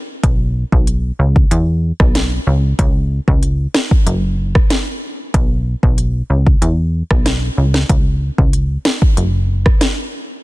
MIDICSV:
0, 0, Header, 1, 3, 480
1, 0, Start_track
1, 0, Tempo, 638298
1, 177, Time_signature, 4, 2, 24, 8
1, 7844, End_track
2, 0, Start_track
2, 0, Title_t, "Analog synth bass"
2, 0, Program_c, 0, 38
2, 177, Note_on_c, 0, 35, 109
2, 486, Note_off_c, 0, 35, 0
2, 544, Note_on_c, 0, 35, 104
2, 841, Note_off_c, 0, 35, 0
2, 896, Note_on_c, 0, 37, 97
2, 1098, Note_off_c, 0, 37, 0
2, 1136, Note_on_c, 0, 40, 103
2, 1446, Note_off_c, 0, 40, 0
2, 1504, Note_on_c, 0, 35, 91
2, 1801, Note_off_c, 0, 35, 0
2, 1856, Note_on_c, 0, 37, 94
2, 2058, Note_off_c, 0, 37, 0
2, 2097, Note_on_c, 0, 37, 112
2, 2406, Note_off_c, 0, 37, 0
2, 2465, Note_on_c, 0, 37, 102
2, 2761, Note_off_c, 0, 37, 0
2, 3056, Note_on_c, 0, 30, 96
2, 3461, Note_off_c, 0, 30, 0
2, 4017, Note_on_c, 0, 35, 106
2, 4326, Note_off_c, 0, 35, 0
2, 4384, Note_on_c, 0, 35, 102
2, 4681, Note_off_c, 0, 35, 0
2, 4736, Note_on_c, 0, 37, 92
2, 4939, Note_off_c, 0, 37, 0
2, 4976, Note_on_c, 0, 40, 96
2, 5286, Note_off_c, 0, 40, 0
2, 5344, Note_on_c, 0, 35, 92
2, 5641, Note_off_c, 0, 35, 0
2, 5696, Note_on_c, 0, 37, 89
2, 5899, Note_off_c, 0, 37, 0
2, 5937, Note_on_c, 0, 37, 109
2, 6246, Note_off_c, 0, 37, 0
2, 6304, Note_on_c, 0, 37, 103
2, 6601, Note_off_c, 0, 37, 0
2, 6896, Note_on_c, 0, 30, 100
2, 7301, Note_off_c, 0, 30, 0
2, 7844, End_track
3, 0, Start_track
3, 0, Title_t, "Drums"
3, 177, Note_on_c, 9, 36, 126
3, 177, Note_on_c, 9, 42, 83
3, 252, Note_off_c, 9, 36, 0
3, 252, Note_off_c, 9, 42, 0
3, 544, Note_on_c, 9, 36, 89
3, 619, Note_off_c, 9, 36, 0
3, 656, Note_on_c, 9, 42, 67
3, 732, Note_off_c, 9, 42, 0
3, 1022, Note_on_c, 9, 36, 103
3, 1097, Note_off_c, 9, 36, 0
3, 1138, Note_on_c, 9, 42, 71
3, 1213, Note_off_c, 9, 42, 0
3, 1503, Note_on_c, 9, 37, 91
3, 1504, Note_on_c, 9, 36, 96
3, 1578, Note_off_c, 9, 37, 0
3, 1579, Note_off_c, 9, 36, 0
3, 1618, Note_on_c, 9, 38, 120
3, 1618, Note_on_c, 9, 42, 76
3, 1693, Note_off_c, 9, 38, 0
3, 1693, Note_off_c, 9, 42, 0
3, 2097, Note_on_c, 9, 36, 126
3, 2097, Note_on_c, 9, 42, 85
3, 2172, Note_off_c, 9, 36, 0
3, 2172, Note_off_c, 9, 42, 0
3, 2464, Note_on_c, 9, 36, 91
3, 2540, Note_off_c, 9, 36, 0
3, 2576, Note_on_c, 9, 42, 68
3, 2651, Note_off_c, 9, 42, 0
3, 2816, Note_on_c, 9, 38, 110
3, 2891, Note_off_c, 9, 38, 0
3, 2942, Note_on_c, 9, 36, 98
3, 3017, Note_off_c, 9, 36, 0
3, 3058, Note_on_c, 9, 42, 70
3, 3133, Note_off_c, 9, 42, 0
3, 3423, Note_on_c, 9, 37, 94
3, 3424, Note_on_c, 9, 36, 97
3, 3498, Note_off_c, 9, 37, 0
3, 3499, Note_off_c, 9, 36, 0
3, 3537, Note_on_c, 9, 38, 117
3, 3538, Note_on_c, 9, 42, 78
3, 3613, Note_off_c, 9, 38, 0
3, 3613, Note_off_c, 9, 42, 0
3, 4017, Note_on_c, 9, 36, 127
3, 4017, Note_on_c, 9, 42, 83
3, 4092, Note_off_c, 9, 36, 0
3, 4092, Note_off_c, 9, 42, 0
3, 4384, Note_on_c, 9, 36, 94
3, 4459, Note_off_c, 9, 36, 0
3, 4496, Note_on_c, 9, 42, 69
3, 4571, Note_off_c, 9, 42, 0
3, 4862, Note_on_c, 9, 36, 98
3, 4937, Note_off_c, 9, 36, 0
3, 4978, Note_on_c, 9, 42, 72
3, 5053, Note_off_c, 9, 42, 0
3, 5343, Note_on_c, 9, 37, 94
3, 5344, Note_on_c, 9, 36, 93
3, 5419, Note_off_c, 9, 36, 0
3, 5419, Note_off_c, 9, 37, 0
3, 5458, Note_on_c, 9, 38, 115
3, 5458, Note_on_c, 9, 42, 74
3, 5533, Note_off_c, 9, 38, 0
3, 5534, Note_off_c, 9, 42, 0
3, 5822, Note_on_c, 9, 38, 72
3, 5897, Note_off_c, 9, 38, 0
3, 5937, Note_on_c, 9, 36, 125
3, 5937, Note_on_c, 9, 42, 84
3, 6012, Note_off_c, 9, 36, 0
3, 6012, Note_off_c, 9, 42, 0
3, 6304, Note_on_c, 9, 36, 93
3, 6380, Note_off_c, 9, 36, 0
3, 6416, Note_on_c, 9, 42, 65
3, 6492, Note_off_c, 9, 42, 0
3, 6656, Note_on_c, 9, 38, 109
3, 6731, Note_off_c, 9, 38, 0
3, 6782, Note_on_c, 9, 36, 102
3, 6857, Note_off_c, 9, 36, 0
3, 6897, Note_on_c, 9, 42, 73
3, 6973, Note_off_c, 9, 42, 0
3, 7263, Note_on_c, 9, 37, 93
3, 7264, Note_on_c, 9, 36, 94
3, 7338, Note_off_c, 9, 37, 0
3, 7339, Note_off_c, 9, 36, 0
3, 7377, Note_on_c, 9, 38, 117
3, 7378, Note_on_c, 9, 42, 76
3, 7452, Note_off_c, 9, 38, 0
3, 7453, Note_off_c, 9, 42, 0
3, 7844, End_track
0, 0, End_of_file